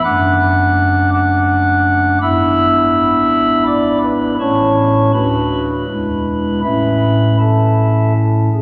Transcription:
0.04 F#1 F#2 A3 D4 F#5 D6 F#6
1.13 F#5 D6 F#6
2.22 G#1 G#2 B3 D4 E4 E5 B5 E6
3.67 D5 B5 D6
4.02 B4 B5
4.40 A1 A2 A3 C#4 E4 C#5 A5 C#6
5.13 D1 D2 A3 D4 F#4 B4 B5
5.88 E1 E2 G#3 D4 E4
6.63 A1 A2 A3 C#4 E4 B4 E5 B5
7.39 A4 E5 A5
8.54 G#4

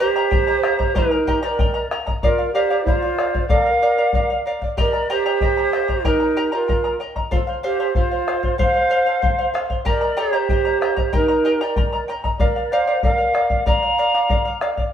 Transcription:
0.00 G4 A#4 C5 D#5 G5 A#5
0.16 G4 A#4 D#5 G5 A#5
0.31 A#4 D#5 G5 A#5, bombo low
0.47 A#4 D#5 A#5
0.63 A#4 D#5 G5 A#5, bombo rim
0.79 A#4 D#5 A#5, bombo low
0.95 D#4 G4 A#4 D#5 G5 A#5, bombo low
1.11 A#4 D#5 A#5
1.27 G4 A#4 D#5 G5 A#5, bombo low
1.42 G4 A#4 C5 D5 D#5 G5 A#5
1.48 A#4
1.59 A#4 D#5 G5 A#5, bombo low
1.74 A#4 D#5 A#5
1.91 A#4 D#5 G5 A#5, bombo rim
2.07 A#4 D#5 A#5, bombo low
2.23 F4 A#4 D5 F5, bombo low
2.38 D5 F5
2.53 G4 A#4 C5 D5 F5
2.70 A#4 D5 F5
2.83 E4 A#4 C5 D5, bombo low
2.88 F5
2.95 F4
3.02 D5 F5
3.18 A#4 D5 F5, bombo rim
3.34 D5 F5, bombo low
3.47 A4 A#4 D5 F5, bombo low
3.65 A#4 D5 F5
3.82 A#4 D5 F5
3.98 A#4 D5 F5
4.13 A#4 D5 F5, bombo low
4.30 D5 F5
4.46 A#4 D5 F5
4.62 D5 F5, bombo low
4.77 G4 A#4 D5 D#5 G5 A#5, bombo low
4.93 A#4 D#5 A#5
5.10 G4 A#4 C5 D#5 G5 A#5
5.26 G4 A#4 D#5 G5 A#5
5.41 A#4 D#5 G5 A#5, bombo low
5.57 A#4 D#5 A#5
5.72 A#4 D#5 G5 A#5, bombo rim
5.88 A#4 D#5 A#5, bombo low
6.05 D#4 G4 A#4 D#5 G5 A#5, bombo low
6.20 A#4 D#5 A#5
6.37 G4 A#4 D#5 G5 A#5
6.52 F4 G4 A#4 D#5 G5 A#5
6.68 A#4 D#5 G5 A#5, bombo low
6.84 A#4 D#5 A#5
7.00 A#4 D#5 G5 A#5
7.16 A#4 D#5 A#5, bombo low
7.31 F4 A4 C5 F5, bombo low
7.47 C5 F5
7.63 G4 A4 C5 F5
7.80 A4 C5 F5
7.95 F4 A4 C5 F5, bombo low
8.11 C5 F5
8.27 A4 C5 F5, bombo rim
8.43 C5 F5, bombo low
8.58 A4 C5 F5, bombo low
8.74 C5 F5
8.90 A4 C5 F5
9.06 A4 C5 F5
9.22 A4 C5 F5, bombo low
9.39 C5 F5
9.54 A4 C5 F5, bombo rim
9.70 C5 F5, bombo low
9.85 G4 A#4 D5 D#5 G5 A#5, bombo low
10.01 A#4 D#5 A#5
10.17 G4 A#4 C5 D#5 G5 A#5
10.33 G4 A#4 D#5 G5 A#5
10.49 A#4 D#5 G5 A#5, bombo low
10.65 A#4 D#5 A#5
10.81 A#4 D#5 G5 A#5, bombo rim
10.96 A#4 D#5 A#5, bombo low
11.13 D#4 G4 A#4 D#5 G5 A#5, bombo low
11.28 A#4 D#5 A#5
11.45 G4 A#4 D#5 G5 A#5
11.61 G4 A#4 D5 D#5 G5 A#5
11.76 A#4 D#5 G5 A#5, bombo low
11.93 A#4 D#5 A#5
12.08 A#4 D#5 G5 A#5
12.24 A#4 D#5 A#5, bombo low
12.40 A#4 D5 F5, bombo low
12.56 D5 F5
12.71 A#4 C5 D5 F5
12.87 A#4 D5 F5
13.03 A#4 D5 F5, bombo low
13.18 D5 F5
13.34 A#4 D5 F5, bombo rim
13.50 D5 F5, bombo low
13.66 A#4 D5 F5 A#5, bombo low
13.83 D5 F5
13.98 A#4 D5 F5
14.14 A#4 D5 F5
14.29 A#4 D5 F5, bombo low
14.45 D5 F5
14.61 A#4 D5 F5, bombo rim
14.77 D5 F5, bombo low

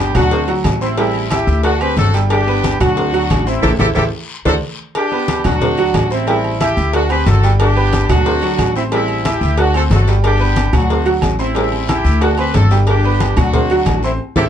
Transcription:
Already playing: D4 G4
0.15 D2 F#3 D4 F#4 F#5, cowbell, high conga, low conga, low agogo, short guiro
0.31 C4 C5 C6, cowbell, high conga, long guiro
0.48 F#3 F#4 F#5, high conga, low agogo
0.64 A1, cowbell, high conga, low timbale, low agogo, short guiro
0.81 C4 E4 C5 C6, high conga, short guiro
0.97 G3 C4 E4 G4 G5, cowbell, high conga, low agogo, long guiro
1.14 high conga, low agogo
1.30 E4 G4 E5 E6, cowbell, high conga, low timbale, low agogo, short guiro
1.47 D2, high conga, short guiro
1.63 D4 F#4 F#5 F#6, cowbell, high conga, low agogo, long guiro
1.80 C4 G4 B4 C5 C6, high conga, low agogo
1.97 G1 F#4 A4, cowbell, high conga, low timbale, low agogo, short guiro
2.14 G3 G4 G5, cowbell, short guiro
2.30 D4 G4, cowbell, high conga, low agogo, long guiro
2.47 B3 B4 B5, high conga
2.64 cowbell, high conga, low timbale, low agogo, short guiro
2.80 D2 F#3 D4 F#4 F#5, cowbell, high conga, low conga, low agogo, short guiro
2.97 C4 C5 C6, cowbell, high conga, long guiro
3.13 F#3 F#4 F#5, high conga, low agogo
3.30 A1, cowbell, high conga, low timbale, low agogo, short guiro
3.47 C4 E4 C5 C6, high conga, short guiro
3.63 A1 E4 G4 A4 C5 E5, cowbell, high conga, high timbale, long guiro
3.79 A1 E4 G4 A4 C5 E5, cowbell, high conga, high timbale, long guiro
3.95 A1 E4 G4 A4 C5 E5, cowbell, high conga, high timbale, long guiro
4.45 D2 D4 F#4 A4 C5 D5, cowbell, high conga, high timbale, long guiro
4.95 D4 G4, cowbell, high conga, low agogo, long guiro
5.12 B3 B4 B5, high conga
5.28 cowbell, high conga, low timbale, low agogo, short guiro
5.44 D2 F#3 D4 F#4 F#5, cowbell, high conga, low conga, low agogo, short guiro
5.61 C4 C5 C6, cowbell, high conga, low conga, long guiro
5.78 F#3 F#4 F#5, high conga, low agogo
5.94 A1, cowbell, high conga, low timbale, low agogo, short guiro
6.10 C4 E4 C5 C6, high conga, short guiro
6.27 G3 C4 E4 G4 G5, cowbell, high conga, low agogo, long guiro
6.44 high conga, low agogo
6.60 E4 G4 E5 E6, cowbell, high conga, low timbale, low agogo, short guiro
6.77 D2, high conga, short guiro
6.93 D4 F#4 F#5 F#6, cowbell, high conga, low agogo, long guiro
7.10 C4 G4 B4 C5 C6, high conga, low agogo
7.26 G1 F#4 A4, cowbell, high conga, low timbale, low agogo, short guiro
7.43 G3 G4 G5, cowbell, high conga, short guiro
7.60 D4 G4, cowbell, high conga, low agogo, long guiro
7.76 B3 B4 B5, high conga
7.93 cowbell, high conga, low timbale, low agogo, short guiro
8.09 D2 F#3 D4 F#4 F#5, cowbell, high conga, low conga, low agogo, short guiro
8.26 C4 C5 C6, cowbell, long guiro
8.42 F#3 F#4 F#5, high conga, low agogo
8.59 A1, cowbell, high conga, low timbale, low agogo, short guiro
8.76 C4 E4 C5 C6, high conga, short guiro
8.92 G3 C4 E4 G4 G5, cowbell, high conga, low agogo, long guiro
9.08 high conga, low agogo
9.25 E4 G4 E5 E6, cowbell, high conga, low timbale, low agogo, short guiro
9.41 D2, high conga, short guiro
9.57 D4 F#4 F#5 F#6, cowbell, high conga, low agogo, long guiro
9.74 C4 F#4 A4 C5 C6, high conga, low agogo
9.90 G1 F#4 A4, cowbell, high conga, low timbale, low agogo, short guiro
10.08 G3 G4 G5, cowbell, high conga, short guiro
10.24 D4 G4, cowbell, high conga, low agogo, long guiro
10.40 B3 B4 B5, high conga
10.56 cowbell, high conga, low timbale, low agogo, short guiro
10.73 D2 F#3 D4 F#4 F#5, cowbell, high conga, low conga, low agogo, short guiro
10.89 C4 C5 C6, cowbell, high conga, long guiro
11.06 F#3 F#4 F#5, high conga, low agogo
11.22 A1, cowbell, high conga, low timbale, low agogo, short guiro
11.39 C4 E4 C5 C6, high conga, short guiro
11.55 G3 C4 E4 G4 G5, cowbell, high conga, low agogo, long guiro
11.72 high conga, low agogo
11.88 E4 G4 E5 E6, cowbell, high conga, low timbale, low agogo, short guiro
12.04 D2, high conga, short guiro
12.21 D4 F#4 F#5 F#6, cowbell, high conga, low agogo, long guiro
12.38 C4 G4 B4 C5 C6, high conga, low agogo
12.54 G1 F#4 A4, cowbell, high conga, low timbale, low agogo, short guiro
12.71 G3 G4 G5, cowbell, high conga, short guiro
12.87 D4 G4, cowbell, high conga, low agogo, long guiro
13.04 B3 B4 B5, high conga
13.20 cowbell, high conga, low timbale, low agogo, short guiro
13.37 D2 F#3 D4 F#4 F#5, cowbell, high conga, low conga, low agogo, short guiro
13.53 C4 C5 C6, cowbell, high conga, low conga, long guiro
13.70 F#3 F#4 F#5, high conga, low agogo
13.86 A1, cowbell, high conga, low timbale, low agogo, short guiro
14.03 C4 E4 C5 C6, high conga, short guiro
14.36 A1 E4 G4 A4 C5 E5, cowbell, high conga, high timbale, long guiro

